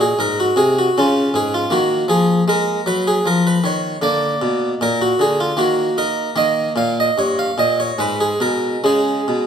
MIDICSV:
0, 0, Header, 1, 2, 480
1, 0, Start_track
1, 0, Tempo, 756620
1, 1077, Time_signature, 3, 2, 24, 8
1, 1077, Tempo, 776197
1, 3957, Tempo, 809717
1, 4917, Tempo, 870827
1, 5739, End_track
2, 0, Start_track
2, 0, Title_t, "Harpsichord"
2, 0, Program_c, 0, 6
2, 0, Note_on_c, 0, 46, 58
2, 0, Note_on_c, 0, 63, 45
2, 6, Note_on_c, 0, 68, 70
2, 68, Note_off_c, 0, 46, 0
2, 120, Note_on_c, 0, 44, 55
2, 121, Note_off_c, 0, 68, 0
2, 127, Note_on_c, 0, 70, 79
2, 242, Note_off_c, 0, 70, 0
2, 254, Note_on_c, 0, 66, 73
2, 313, Note_off_c, 0, 44, 0
2, 357, Note_on_c, 0, 48, 57
2, 363, Note_on_c, 0, 68, 74
2, 368, Note_off_c, 0, 66, 0
2, 483, Note_off_c, 0, 68, 0
2, 498, Note_on_c, 0, 66, 65
2, 553, Note_off_c, 0, 48, 0
2, 573, Note_off_c, 0, 63, 0
2, 611, Note_off_c, 0, 66, 0
2, 619, Note_on_c, 0, 61, 43
2, 622, Note_on_c, 0, 49, 58
2, 629, Note_on_c, 0, 65, 75
2, 805, Note_off_c, 0, 49, 0
2, 851, Note_on_c, 0, 44, 55
2, 855, Note_off_c, 0, 65, 0
2, 860, Note_on_c, 0, 68, 63
2, 968, Note_off_c, 0, 68, 0
2, 979, Note_on_c, 0, 65, 71
2, 1036, Note_off_c, 0, 44, 0
2, 1060, Note_off_c, 0, 61, 0
2, 1081, Note_on_c, 0, 58, 46
2, 1086, Note_on_c, 0, 51, 65
2, 1087, Note_off_c, 0, 65, 0
2, 1091, Note_on_c, 0, 66, 81
2, 1272, Note_off_c, 0, 51, 0
2, 1286, Note_off_c, 0, 66, 0
2, 1316, Note_on_c, 0, 53, 55
2, 1324, Note_on_c, 0, 68, 80
2, 1509, Note_off_c, 0, 53, 0
2, 1526, Note_off_c, 0, 68, 0
2, 1559, Note_on_c, 0, 56, 61
2, 1569, Note_on_c, 0, 70, 76
2, 1752, Note_off_c, 0, 56, 0
2, 1798, Note_on_c, 0, 54, 59
2, 1805, Note_off_c, 0, 70, 0
2, 1805, Note_on_c, 0, 71, 81
2, 1922, Note_off_c, 0, 71, 0
2, 1928, Note_on_c, 0, 68, 72
2, 1990, Note_off_c, 0, 54, 0
2, 2041, Note_on_c, 0, 53, 59
2, 2043, Note_off_c, 0, 68, 0
2, 2049, Note_on_c, 0, 70, 76
2, 2163, Note_off_c, 0, 70, 0
2, 2172, Note_on_c, 0, 71, 75
2, 2230, Note_off_c, 0, 53, 0
2, 2276, Note_on_c, 0, 51, 53
2, 2284, Note_off_c, 0, 71, 0
2, 2287, Note_on_c, 0, 73, 71
2, 2467, Note_off_c, 0, 51, 0
2, 2485, Note_off_c, 0, 73, 0
2, 2492, Note_off_c, 0, 58, 0
2, 2510, Note_on_c, 0, 50, 60
2, 2514, Note_on_c, 0, 58, 43
2, 2520, Note_on_c, 0, 74, 71
2, 2704, Note_off_c, 0, 50, 0
2, 2758, Note_on_c, 0, 47, 59
2, 2925, Note_off_c, 0, 74, 0
2, 2948, Note_off_c, 0, 47, 0
2, 3003, Note_on_c, 0, 46, 60
2, 3011, Note_on_c, 0, 70, 84
2, 3122, Note_off_c, 0, 70, 0
2, 3129, Note_on_c, 0, 66, 78
2, 3191, Note_off_c, 0, 46, 0
2, 3239, Note_on_c, 0, 50, 53
2, 3241, Note_off_c, 0, 66, 0
2, 3250, Note_on_c, 0, 68, 73
2, 3362, Note_off_c, 0, 68, 0
2, 3369, Note_on_c, 0, 65, 69
2, 3429, Note_off_c, 0, 50, 0
2, 3449, Note_off_c, 0, 58, 0
2, 3471, Note_on_c, 0, 51, 54
2, 3475, Note_on_c, 0, 58, 43
2, 3482, Note_off_c, 0, 65, 0
2, 3482, Note_on_c, 0, 66, 73
2, 3664, Note_off_c, 0, 51, 0
2, 3718, Note_off_c, 0, 66, 0
2, 3724, Note_on_c, 0, 63, 49
2, 3726, Note_on_c, 0, 70, 71
2, 3913, Note_off_c, 0, 63, 0
2, 3931, Note_off_c, 0, 58, 0
2, 3958, Note_on_c, 0, 51, 61
2, 3959, Note_on_c, 0, 58, 43
2, 3962, Note_off_c, 0, 70, 0
2, 3969, Note_on_c, 0, 75, 81
2, 4147, Note_off_c, 0, 51, 0
2, 4165, Note_off_c, 0, 75, 0
2, 4196, Note_on_c, 0, 46, 51
2, 4206, Note_on_c, 0, 77, 80
2, 4319, Note_off_c, 0, 77, 0
2, 4340, Note_on_c, 0, 75, 64
2, 4387, Note_off_c, 0, 46, 0
2, 4445, Note_on_c, 0, 43, 50
2, 4446, Note_off_c, 0, 75, 0
2, 4450, Note_on_c, 0, 73, 74
2, 4562, Note_off_c, 0, 73, 0
2, 4570, Note_on_c, 0, 77, 74
2, 4632, Note_off_c, 0, 43, 0
2, 4682, Note_off_c, 0, 77, 0
2, 4682, Note_on_c, 0, 46, 47
2, 4690, Note_on_c, 0, 75, 74
2, 4803, Note_off_c, 0, 75, 0
2, 4813, Note_on_c, 0, 73, 66
2, 4873, Note_off_c, 0, 46, 0
2, 4894, Note_off_c, 0, 58, 0
2, 4922, Note_on_c, 0, 44, 45
2, 4924, Note_on_c, 0, 56, 34
2, 4925, Note_off_c, 0, 73, 0
2, 4932, Note_on_c, 0, 71, 68
2, 5039, Note_off_c, 0, 71, 0
2, 5044, Note_on_c, 0, 68, 60
2, 5106, Note_off_c, 0, 44, 0
2, 5154, Note_on_c, 0, 47, 46
2, 5155, Note_off_c, 0, 68, 0
2, 5160, Note_on_c, 0, 70, 56
2, 5345, Note_off_c, 0, 47, 0
2, 5372, Note_off_c, 0, 56, 0
2, 5393, Note_on_c, 0, 49, 51
2, 5393, Note_on_c, 0, 56, 32
2, 5396, Note_off_c, 0, 70, 0
2, 5404, Note_on_c, 0, 68, 59
2, 5588, Note_off_c, 0, 49, 0
2, 5637, Note_on_c, 0, 47, 44
2, 5739, Note_off_c, 0, 47, 0
2, 5739, Note_off_c, 0, 56, 0
2, 5739, Note_off_c, 0, 68, 0
2, 5739, End_track
0, 0, End_of_file